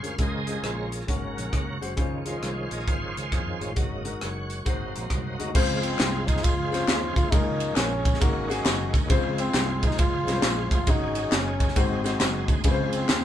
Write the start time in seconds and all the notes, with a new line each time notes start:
Already playing: C#4 G#4 C5
0.03 D2 G#3 C#4 F4 A#4 F5, closed hi-hat
0.18 C#2 C#3 G#3 C#4 F4 G#4 A#4 C5 D#5, kick, closed hi-hat
0.47 G#3 C#4 F4 G4, closed hi-hat
0.54 G#4
0.63 A#1 F4 G#4 C#5, cross-stick, closed hi-hat
0.92 closed hi-hat
1.01 A4, cross-stick
1.07 G#1 G#2 C#3 F#3 G#3 A#3 C#4 F#4 A#4, kick, closed hi-hat
1.37 A#1, cross-stick, closed hi-hat
1.53 C#2, kick, cross-stick, closed hi-hat
1.81 F#1 G#3 C#4 F#4 C5, closed hi-hat
1.97 C#2 C#3 D#3 F3 G#3 C#4 F4 C5, kick, closed hi-hat
2.25 G#3 C#4 F4 G#4 C5 D#5, closed hi-hat
2.42 C2, cross-stick, closed hi-hat
2.71 A#1 D#5, closed hi-hat
2.80 cross-stick
2.87 G#1 G#4 C5 F5, kick, closed hi-hat
3.17 C#2, cross-stick, closed hi-hat
3.32 F2, kick, cross-stick, closed hi-hat
3.60 A1 G#3 C#4 F4 C#5 F5, closed hi-hat
3.76 G#1 G#2 C#3 F#3 G#3 A#3 D#4 F#4 C#5 D#5, kick, closed hi-hat
4.04 G#3 D#4 F#4 A#4, closed hi-hat
4.21 F#1 F#4 C#5, cross-stick, closed hi-hat
4.50 closed hi-hat
4.65 G#1 G#2 C3 F#3 G#3 A#3 D#4 F#4 C5, kick, closed hi-hat
4.96 A#1, cross-stick, closed hi-hat
5.10 C2, kick, cross-stick, closed hi-hat
5.39 D2 G#3 D#4 F#4 D#5, closed hi-hat
5.54 C#2 C#3 F3 G#3 C4 F4 G#4 C5, kick, crash, tambourine
5.83 C4, ride, tambourine
5.99 C2, snare, clap, ride, tambourine
6.27 D#4, kick, ride, tambourine
6.37 snare
6.43 C#2 F4, kick, ride, tambourine
6.71 G#3 C4 C#4 F4 C5, snare, ride, tambourine
6.88 D#2, snare, clap, ride, tambourine
7.16 D2 F4, kick, ride, tambourine
7.31 C#2 C#3 F3 G#3 A#3 C4 C#4 D#4 F4 G#4 A#4, kick, ride, tambourine
7.38 C#4
7.60 ride, tambourine
7.75 A#1 C#4, snare, clap, ride, tambourine
8.05 kick, ride, tambourine
8.14 snare
8.20 G#1 G#2 D#3 G#3 A#3 C#4 D#4 F#4 A#4, kick, ride, tambourine
8.49 G#3 C#4 D#4 F#4 G#4, snare, ride, tambourine
8.65 F#1, snare, clap, ride, tambourine
8.94 D2, kick, ride, tambourine
9.09 C#2 C#3 E3 G#3 C4 F4 G#4 C5, kick, ride, tambourine
9.15 F3
9.38 C4, ride, tambourine
9.54 C2, snare, clap, ride, tambourine
9.83 D#4, kick, ride, tambourine
9.91 snare
9.98 C#2 F4, kick, ride, tambourine
10.27 C2 G#3 C4 C#4 F4 B4, snare, ride, tambourine
10.34 C5
10.42 A#1, snare, clap, ride, tambourine
10.71 A1 F4, kick, ride, tambourine
10.86 G#1 G#2 F#3 G#3 C#4 D#4 F#4 G#4 C#5, kick, ride, tambourine
11.15 ride, tambourine
11.32 F#1 C#4, snare, clap, ride, tambourine
11.60 kick, ride, tambourine
11.68 snare
11.75 G#1 G#2 F#3 G#3 C4 D#4 F#4 C5, kick, ride, tambourine
11.81 G#4
12.04 G#3 C4 D#4 F#4 C5, snare, ride, tambourine
12.20 F#1, snare, clap, ride, tambourine
12.48 D2, kick, ride, tambourine
12.64 C#2 C#3 D#3 G#3 C4 F4 G#4 B4 C5, kick, ride, tambourine
12.70 F3 C5
12.93 C4, ride, tambourine
13.09 D#2, snare, clap, ride, tambourine